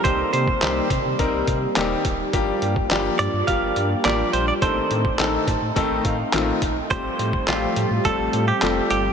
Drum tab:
HH |x-x-x-x-x-x-x-x-|x-x-x-x-x-x-x-x-|x-x-x-x-x-x-x-x-|x-x-x-x-x-x-x-x-|
CP |----x-------x---|----x-------x---|----x-------x---|----x-------x---|
SD |----o-------o---|----o-------o---|----o-------o---|----o-------o---|
BD |o--o--o-o-o---o-|o--o----o-------|o--o--o-o-o---o-|o--o----o-------|